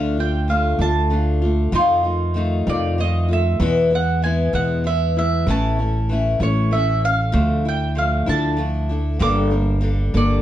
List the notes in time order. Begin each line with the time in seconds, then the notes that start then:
Already playing: D2 D3 A3 D4 F4 F5
0.17 A3 D4 F4 G5
0.48 D3 A3 D4 F4 F5
0.79 D2 D3 A3 D4 F4 A5
1.10 D3 A3 D4 F4
1.42 A3 D4 F4
1.72 F2 C3 D#3 A3 D#4 F4 C6
2.03 D#3 A3 D#4 F4
2.34 D#3 A3 D#4 F4
2.67 F2 C3 D#3 A3 D#4 F4 D5
2.98 D#3 A3 D#4 F4 D#5
3.29 D#3 A3 F4
3.33 E5
3.60 E2 B2 E3 G#3 B3 E4
3.90 E3 G#3 B3 E4
3.95 F#5
4.22 E3 G#3 B3 E4 G#5
4.53 E2 B2 E3 G#3 B3 E4 F#5
4.84 E3 G#3 B3 E4 E5
5.17 E3 G#3 B3 E4 E5
5.47 A1 A2 E3 A3 C#4 E4 A5
5.79 A3 C#4 E4
6.09 E3 A3 C#4 E4
6.40 A1 A2 E3 A3 C#4 E4 C#5
6.71 E3 A3 C#4 E4 E5
7.04 A3 C#4 F5
7.32 D2 D3 F3 A3 D4
7.65 A3 D4 E4 G5
7.95 F3 A3 D4 F5
8.26 D2 D3 F3 A3 D4 E4 A5
8.57 F3 A3 D4 E4
8.89 A3 D4 E4
9.19 G1 G2 D3 G3 A#3 D4 A4 D6
9.50 G3 A#3 D4 A4
9.81 G3 A#3 D4 A4
10.14 G1 G2 D3 G3 A#3 D4 A4 D5